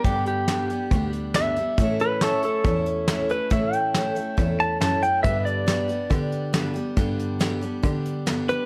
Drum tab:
HH |xxxxxxxx|xxxxxxxx|xxxxxxxx|xxxxxxxx|
SD |--o---o-|--o---o-|--o---o-|--o---o-|
BD |o---o---|o---o---|o---o---|o---o---|

HH |xxxxxxxx|
SD |--o---o-|
BD |o---o---|